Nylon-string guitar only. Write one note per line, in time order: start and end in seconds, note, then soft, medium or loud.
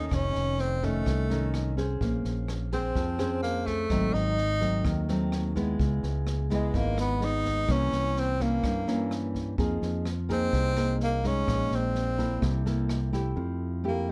0.00 0.78 D#3 soft
0.00 0.79 A3 medium
0.00 0.79 C#4 medium
0.12 1.04 F2 soft
0.83 1.26 D#3 medium
0.83 1.26 A3 medium
0.83 1.26 C#4 medium
1.30 1.73 D#3 medium
1.30 1.74 A3 medium
1.30 1.74 C#4 medium
1.77 2.68 C#4 medium
1.77 2.68 G#4 medium
1.77 2.68 C5 medium
2.01 2.93 A#3 medium
2.73 3.16 G#4 medium
2.73 3.16 C5 medium
2.96 3.88 F3 soft
3.18 3.86 C#4 medium
3.18 3.86 G#4 medium
3.18 3.86 C5 medium
3.90 4.82 G#2 medium
3.90 4.37 F#3 medium
3.90 4.37 A3 medium
3.90 4.37 C4 medium
4.61 5.04 F#3 medium
4.61 5.05 A3 medium
4.61 5.05 C4 medium
4.84 5.77 D#3 medium
5.09 5.52 F#3 medium
5.09 5.52 A3 medium
5.09 5.52 C4 medium
5.56 6.47 G#3 medium
5.56 6.47 B3 medium
5.56 6.47 E4 medium
5.80 6.72 C#3 soft
6.50 7.18 G#3 medium
6.50 7.18 B3 medium
6.50 7.18 E4 medium
6.73 7.66 G#2 medium
7.20 7.64 G#3 medium
7.20 7.64 B3 medium
7.68 8.61 C3 soft
7.68 8.36 E3 medium
7.68 8.36 A#3 medium
7.68 8.36 C#4 medium
8.40 8.83 E3 medium
8.40 8.83 A#3 soft
8.40 8.84 C#4 medium
8.63 9.56 G2 medium
8.87 9.54 E3 medium
8.87 9.54 A#3 medium
8.87 9.55 C#4 medium
9.58 10.51 F3 medium
9.58 10.05 A#3 soft
9.58 10.05 D#4 medium
9.58 10.06 G#4 medium
10.29 10.73 A#3 medium
10.29 10.73 D#4 medium
10.29 10.73 G#4 medium
10.53 11.45 C3 medium
10.77 11.20 A#3 medium
10.77 11.20 D#4 medium
10.77 11.21 G#4 medium
11.24 12.15 G#3 medium
11.24 12.15 D#4 medium
11.47 12.40 A#2 medium
12.18 12.62 A#3 medium
12.18 12.62 E4 medium
12.18 12.62 A4 medium
12.42 13.34 C3 medium
12.66 13.10 A#3 medium
12.66 13.10 E4 medium
12.66 13.10 A4 medium
13.13 13.82 A3 medium
13.13 13.82 E4 medium
13.13 13.83 G4 medium
13.36 14.12 F3 soft
13.84 14.12 A3 medium
13.84 14.12 E4 soft
13.84 14.12 G4 medium